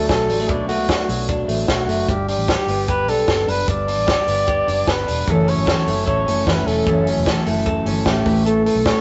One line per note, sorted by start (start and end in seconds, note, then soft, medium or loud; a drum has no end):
0.00 0.48 B2 medium
0.00 0.29 A3 medium
0.00 0.89 D4 medium
0.09 0.30 B1 medium
0.09 1.08 F#3 medium
0.09 0.50 A4 medium
0.09 kick loud
0.09 snare medium
0.09 closed hi-hat medium
0.29 0.49 A1 medium
0.29 0.40 G3 medium
0.29 open hi-hat medium
0.40 0.68 A3 soft
0.49 0.79 B1 medium
0.49 2.09 B2 medium
0.49 0.68 D4 medium
0.49 kick loud
0.49 closed hi-hat medium
0.69 1.47 A3 medium
0.69 1.25 F#4 medium
0.69 open hi-hat medium
0.79 0.96 C#2 medium
0.89 1.28 D4 medium
0.89 kick loud
0.89 snare loud
0.89 closed hi-hat medium
1.09 1.43 B1 medium
1.09 1.67 F#3 soft
1.09 open hi-hat medium
1.29 2.28 D4 medium
1.29 kick medium
1.29 closed hi-hat medium
1.48 1.65 A1 medium
1.48 1.87 A3 medium
1.48 open hi-hat medium
1.68 1.86 B1 loud
1.68 2.12 F#3 medium
1.68 2.10 F#4 medium
1.68 kick medium
1.68 snare medium
1.68 closed hi-hat medium
1.88 2.05 F#1 medium
1.88 2.12 A3 medium
1.88 open hi-hat medium
2.08 2.34 G1 loud
2.08 3.66 G2 medium
2.08 2.29 G4 medium
2.08 kick loud
2.08 closed hi-hat medium
2.28 3.07 D4 medium
2.28 2.90 G4 medium
2.28 open hi-hat medium
2.37 2.55 A1 medium
2.48 2.87 G4 medium
2.48 kick loud
2.48 snare loud
2.48 closed hi-hat medium
2.67 3.08 G1 medium
2.67 3.26 B3 medium
2.67 open hi-hat medium
2.88 4.06 G4 medium
2.88 3.11 B4 loud
2.88 kick medium
2.88 closed hi-hat medium
3.08 3.25 B1 medium
3.08 3.46 D4 medium
3.08 3.51 A4 medium
3.08 open hi-hat medium
3.28 3.45 G1 medium
3.28 4.26 B3 medium
3.28 kick medium
3.28 snare medium
3.28 closed hi-hat medium
3.47 3.65 F#1 medium
3.47 3.86 D4 medium
3.47 3.69 B4 medium
3.47 open hi-hat medium
3.67 3.98 G1 medium
3.67 5.26 G2 medium
3.67 4.91 D5 loud
3.67 kick loud
3.67 closed hi-hat medium
3.87 4.66 D4 soft
3.87 open hi-hat medium
3.98 4.15 A1 medium
4.07 4.46 G4 medium
4.07 kick loud
4.07 snare loud
4.07 closed hi-hat medium
4.27 4.61 G1 medium
4.27 4.86 B3 medium
4.27 open hi-hat medium
4.47 5.31 G4 medium
4.47 kick medium
4.47 closed hi-hat medium
4.67 4.85 F#1 medium
4.67 5.05 D4 medium
4.67 open hi-hat medium
4.87 5.05 G1 loud
4.87 5.31 B3 medium
4.87 5.32 B4 medium
4.87 kick loud
4.87 snare loud
4.87 closed hi-hat medium
5.06 5.25 E1 medium
5.06 5.31 D4 medium
5.06 open hi-hat medium
5.26 5.53 F#1 loud
5.26 6.85 F#2 medium
5.26 5.67 F#2 medium
5.26 5.67 C#3 medium
5.26 5.66 E3 medium
5.26 5.67 A3 medium
5.26 5.68 C#4 medium
5.26 5.68 A4 medium
5.26 kick loud
5.26 closed hi-hat medium
5.30 5.51 A4 medium
5.46 6.26 C#4 medium
5.46 6.07 C#5 medium
5.46 open hi-hat medium
5.58 5.74 G1 medium
5.66 5.87 E3 medium
5.66 5.87 A3 medium
5.66 5.86 C#4 medium
5.66 6.06 A4 medium
5.66 5.86 A4 medium
5.66 kick loud
5.66 snare loud
5.66 closed hi-hat medium
5.87 6.04 F#1 medium
5.87 6.28 E3 soft
5.87 6.47 A3 medium
5.87 6.27 A3 medium
5.87 6.27 C#4 soft
5.87 6.26 A4 soft
5.87 open hi-hat medium
6.06 6.24 A1 medium
6.06 7.26 A4 medium
6.06 6.49 C#5 medium
6.06 kick medium
6.06 closed hi-hat medium
6.26 6.44 F#1 medium
6.26 6.44 E3 soft
6.26 6.45 A3 soft
6.26 6.67 C#4 medium
6.26 6.46 C#4 soft
6.26 6.46 A4 soft
6.26 open hi-hat medium
6.45 6.64 F#1 medium
6.45 6.86 E3 medium
6.45 6.86 A3 medium
6.45 7.45 A3 medium
6.45 6.86 C#4 medium
6.45 6.87 A4 medium
6.45 6.68 B4 medium
6.45 kick loud
6.45 snare medium
6.45 closed hi-hat medium
6.66 6.83 E1 medium
6.66 7.06 C#4 medium
6.66 7.07 A4 medium
6.66 open hi-hat medium
6.86 7.12 F#1 medium
6.86 7.26 F#2 medium
6.86 8.30 F#2 medium
6.86 7.26 C#3 medium
6.86 7.25 E3 medium
6.86 7.25 A3 medium
6.86 7.26 C#4 medium
6.86 7.27 A4 medium
6.86 kick loud
6.86 closed hi-hat medium
7.06 7.85 C#4 medium
7.06 open hi-hat medium
7.17 7.34 E1 medium
7.25 7.46 E3 medium
7.25 7.44 A3 medium
7.25 7.44 C#4 medium
7.25 7.65 A4 medium
7.25 7.43 A4 medium
7.25 kick loud
7.25 snare loud
7.25 closed hi-hat medium
7.44 7.80 F#1 medium
7.44 7.87 E3 soft
7.44 7.86 A3 soft
7.44 8.05 A3 medium
7.44 7.86 C#4 medium
7.44 7.85 A4 medium
7.44 open hi-hat medium
7.66 8.66 A4 medium
7.66 kick medium
7.66 closed hi-hat medium
7.85 8.03 G1 medium
7.85 8.05 E3 soft
7.85 8.06 A3 medium
7.85 8.66 C#4 medium
7.85 8.06 C#4 medium
7.85 8.06 A4 medium
7.85 open hi-hat medium
8.06 8.23 A1 loud
8.06 8.26 E3 medium
8.06 8.26 A3 medium
8.06 8.25 A3 medium
8.06 8.25 C#4 medium
8.06 8.43 G4 medium
8.06 8.25 A4 medium
8.06 kick loud
8.06 snare medium
8.06 closed hi-hat medium
8.25 8.68 A1 medium
8.25 8.45 A3 medium
8.25 8.84 A3 soft
8.25 8.86 C#4 soft
8.25 8.86 E4 soft
8.25 8.86 B4 medium
8.25 kick medium
8.25 open hi-hat medium
8.46 9.01 A3 medium
8.46 8.64 A4 medium
8.46 closed hi-hat medium
8.65 9.01 A4 medium
8.65 open hi-hat medium
8.75 8.92 B1 medium
8.85 9.01 A3 medium
8.85 9.01 C#4 medium
8.85 9.01 E4 medium
8.85 9.01 B4 medium
8.85 9.01 C#5 medium
8.85 kick loud
8.85 snare loud
8.85 closed hi-hat medium